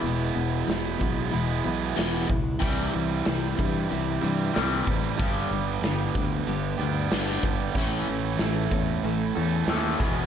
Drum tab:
HH |o-o-o-o-|o-o-o-o-|o-o-o-o-|o-o-o-o-|
SD |--o---o-|--o---o-|--o---o-|--o---o-|
BD |---o---o|o--o---o|o--o---o|o--o---o|